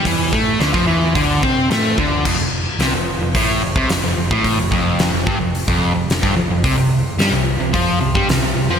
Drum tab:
CC |----------------|x---------------|----------------|----------------|
HH |o---o---o---o---|----o---o---o---|o---o---o---o---|o---o---o---o---|
SD |----o-------o---|----o-------o---|----o-------o---|----o-------o---|
BD |o-o--o--o-o---o-|o-------o--o---o|o-o---o--o---o--|o-------o--o----|